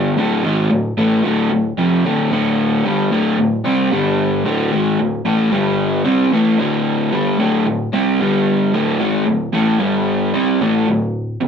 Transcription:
0.00 0.16 G2 medium
0.00 0.16 D3 medium
0.00 0.16 G3 medium
0.17 0.43 D2 medium
0.17 0.43 A2 loud
0.17 0.44 D3 loud
0.44 0.70 G#2 medium
0.44 0.70 D#3 loud
0.44 0.70 G#3 medium
0.71 0.92 D2 medium
0.71 0.92 A2 medium
0.97 1.23 A2 medium
0.97 1.24 E3 medium
0.97 1.24 A3 loud
1.24 1.50 D2 medium
1.24 1.50 A2 loud
1.24 1.51 D3 loud
1.51 1.72 D2 medium
1.51 1.72 A2 medium
1.78 2.04 F2 medium
1.78 2.04 C3 medium
1.78 2.04 F3 medium
2.05 2.30 D2 medium
2.05 2.30 A2 medium
2.05 2.31 D3 medium
2.31 2.84 D2 medium
2.31 2.84 A2 loud
2.31 2.84 D3 loud
2.84 3.10 G2 loud
2.84 3.11 D3 medium
2.84 3.11 G3 loud
3.11 3.37 D2 medium
3.11 3.38 A2 medium
3.11 3.38 D3 medium
3.38 3.60 D2 medium
3.38 3.60 A2 medium
3.64 3.91 C3 medium
3.64 3.91 G3 medium
3.64 3.91 C4 loud
3.91 4.44 G2 medium
3.91 4.44 D3 medium
3.91 4.45 G3 medium
4.45 4.71 D2 medium
4.45 4.71 A2 medium
4.45 4.71 D3 loud
4.72 4.98 G#2 medium
4.72 4.98 D#3 medium
4.72 4.98 G#3 medium
5.00 5.21 D2 medium
5.00 5.21 A2 medium
5.25 5.51 A2 medium
5.25 5.51 E3 medium
5.25 5.52 A3 loud
5.51 6.04 G2 loud
5.51 6.05 D3 medium
5.51 6.04 G3 loud
6.05 6.31 C3 medium
6.05 6.32 G3 medium
6.05 6.32 C4 loud
6.32 6.58 A2 medium
6.32 6.58 E3 medium
6.32 6.59 A3 loud
6.59 7.12 D2 loud
6.59 7.12 A2 loud
6.59 7.11 D3 loud
7.12 7.38 G2 loud
7.12 7.39 D3 loud
7.12 7.39 G3 loud
7.39 7.65 D2 medium
7.39 7.65 A2 medium
7.39 7.66 D3 medium
7.66 7.88 D2 medium
7.66 7.88 A2 medium
7.93 8.19 C3 medium
7.93 8.19 G3 medium
7.93 8.19 C4 loud
8.20 8.72 G2 medium
8.20 8.73 D3 medium
8.20 8.73 G3 medium
8.73 8.99 D2 medium
8.73 9.00 A2 loud
8.73 9.00 D3 loud
9.00 9.26 G#2 medium
9.00 9.26 D#3 medium
9.00 9.27 G#3 loud
9.26 9.48 D2 medium
9.26 9.48 A2 medium
9.53 9.79 A2 medium
9.53 9.80 E3 medium
9.53 9.80 A3 medium
9.80 10.33 G2 loud
9.80 10.33 D3 loud
9.80 10.33 G3 medium
10.33 10.60 C3 medium
10.33 10.60 G3 medium
10.33 10.60 C4 medium
10.61 10.87 A2 medium
10.61 10.87 E3 medium
10.61 10.87 A3 loud
10.87 11.36 D2 medium
10.87 11.36 A2 medium
11.41 11.48 D2 medium
11.41 11.48 B2 medium

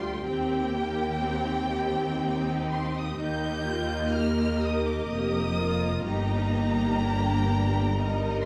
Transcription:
0.00 0.25 D2 medium
0.00 0.26 D2 medium
0.00 0.25 G3 medium
0.00 0.26 F4 medium
0.00 0.26 G4 medium
0.00 3.16 G5 medium
0.00 0.24 C6 loud
0.24 3.18 D#2 medium
0.24 0.73 C4 medium
0.24 1.21 G4 medium
0.24 2.18 G4 medium
0.24 2.66 G5 loud
0.74 1.23 A#3 medium
1.23 1.71 C4 medium
1.23 2.19 G4 medium
1.72 3.16 C4 medium
2.22 3.18 D#4 medium
2.22 3.17 G4 medium
2.72 2.95 C6 medium
2.96 3.19 D#6 medium
3.19 5.06 D#2 medium
3.19 5.07 A#3 medium
3.19 3.67 D#4 medium
3.19 4.13 G4 medium
3.19 6.01 D#5 medium
3.19 4.13 G6 loud
3.68 4.15 F4 medium
4.13 5.09 G4 medium
4.13 6.01 A#4 medium
4.13 4.61 F6 loud
4.63 4.86 D#6 medium
4.85 5.09 D6 medium
5.09 6.03 F1 medium
5.09 6.03 F2 medium
5.09 6.04 A#3 medium
5.09 5.57 G4 medium
5.09 6.05 D#6 loud
5.57 6.05 F4 medium
6.04 8.45 G1 medium
6.04 8.45 G2 medium
6.04 7.91 A#3 medium
6.04 7.01 D#4 medium
6.04 6.52 G4 medium
6.04 6.99 D#5 medium
6.04 8.36 A#5 loud
6.54 7.92 G4 medium
7.02 7.48 D4 medium
7.02 7.96 G5 medium
7.49 7.94 D4 medium
7.96 8.45 G3 medium
7.96 8.45 D#4 medium
7.96 8.45 A#4 medium
7.96 8.45 D#5 medium

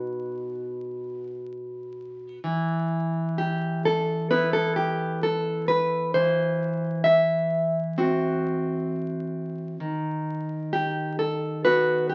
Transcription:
0.00 2.38 B2 medium
0.00 2.38 B3 soft
0.00 2.39 D#4 soft
0.00 1.41 F#4 medium
2.44 6.11 E3 medium
3.38 3.83 G4 medium
3.85 4.29 A4 loud
4.30 6.11 B3 medium
4.30 6.12 E4 medium
4.30 4.53 B4 loud
4.53 4.76 A4 loud
4.76 5.21 G4 medium
5.23 5.68 A4 loud
5.68 6.13 B4 loud
6.14 9.75 E3 medium
6.14 7.01 C5 loud
7.04 9.75 E5 loud
7.98 9.76 C4 medium
7.98 9.76 F#4 medium
9.80 12.14 D#3 medium
10.73 11.16 G4 loud
11.19 11.62 A4 medium
11.64 12.14 B3 medium
11.64 12.14 F#4 medium
11.64 12.07 B4 loud
12.09 12.14 G4 medium

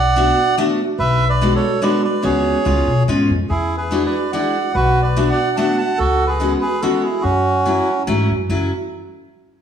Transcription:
0.00 0.29 B1 medium
0.00 0.56 D5 medium
0.00 0.56 F#5 loud
0.16 0.38 A3 medium
0.16 0.38 B3 medium
0.16 0.38 D4 medium
0.16 0.39 F#4 medium
0.58 0.79 A3 medium
0.58 0.79 B3 medium
0.58 0.80 D4 medium
0.58 0.80 F#4 loud
0.99 1.53 B1 medium
0.99 1.25 B4 loud
0.99 1.28 E5 loud
1.29 1.54 B4 medium
1.29 1.54 D5 medium
1.41 1.63 G#3 medium
1.41 1.63 B3 medium
1.41 1.63 D4 medium
1.41 1.63 F#4 medium
1.55 1.81 A4 medium
1.55 1.84 C#5 medium
1.82 2.04 G#3 medium
1.82 2.04 B3 medium
1.82 2.04 D4 medium
1.82 2.04 F#4 medium
1.82 2.03 B4 medium
1.82 2.03 D5 medium
2.04 2.23 B4 medium
2.04 2.25 D5 medium
2.23 2.51 C#2 medium
2.23 2.57 G#3 medium
2.23 2.57 B3 medium
2.23 2.57 C#4 medium
2.23 2.57 F#4 medium
2.23 3.03 G#4 medium
2.23 3.03 C#5 loud
2.65 2.80 C#2 loud
2.65 2.87 G#3 medium
2.65 2.87 B3 medium
2.65 2.87 C#4 medium
2.65 2.87 F4 medium
2.87 3.05 B2 medium
3.08 3.27 G#2 medium
3.08 3.29 G#3 medium
3.08 3.29 B3 medium
3.08 3.30 C#4 medium
3.08 3.30 F4 medium
3.29 3.47 F2 medium
3.49 4.04 E2 medium
3.49 3.76 E4 medium
3.49 3.76 G#4 loud
3.77 4.03 G#4 medium
3.77 4.04 B4 medium
3.91 4.13 G#3 medium
3.91 4.13 D4 medium
3.91 4.13 E4 medium
3.91 4.13 F#4 medium
4.05 4.31 B4 medium
4.05 4.32 D5 medium
4.32 4.55 G#3 medium
4.32 4.55 D4 medium
4.32 4.55 E4 medium
4.32 4.55 F#4 medium
4.32 4.72 D5 medium
4.32 4.75 F#5 medium
4.75 5.29 B1 medium
4.75 5.01 F#4 medium
4.75 5.02 B4 loud
5.02 5.29 B4 medium
5.02 5.31 D5 medium
5.16 5.38 A3 medium
5.16 5.38 B3 medium
5.16 5.38 D4 medium
5.16 5.38 F#4 medium
5.30 5.57 D5 medium
5.30 5.57 F#5 loud
5.57 5.79 A3 medium
5.57 5.79 B3 medium
5.57 5.79 D4 medium
5.57 5.80 F#4 medium
5.57 5.78 F#5 medium
5.57 5.76 A5 medium
5.78 5.98 F#5 medium
5.78 5.99 A5 medium
5.98 6.53 C#2 medium
5.98 6.25 F#4 loud
5.98 6.27 A4 loud
6.27 6.54 G#4 medium
6.27 6.52 B4 medium
6.40 6.62 G#3 medium
6.40 6.62 B3 medium
6.40 6.62 C#4 medium
6.40 6.62 F#4 medium
6.61 6.81 G#4 medium
6.61 6.82 B4 medium
6.81 7.04 G#3 medium
6.81 7.04 B3 medium
6.81 7.04 C#4 medium
6.81 7.02 F#4 medium
6.81 7.05 F#4 medium
6.81 7.04 A4 medium
7.03 7.22 E4 medium
7.03 7.24 G#4 medium
7.22 7.78 F#2 medium
7.22 8.03 C#4 medium
7.22 8.02 F#4 loud
7.66 7.87 F#3 medium
7.66 7.87 A3 medium
7.66 7.88 C#4 medium
7.66 7.88 E4 medium
8.07 8.27 G#2 medium
8.07 8.29 F#3 medium
8.07 8.29 A3 medium
8.07 8.30 C#4 medium
8.07 8.30 E4 medium
8.29 8.47 F#2 medium
8.49 8.69 F#1 medium
8.49 8.70 F#3 medium
8.49 8.70 A3 medium
8.49 8.70 C#4 medium
8.49 8.70 E4 medium

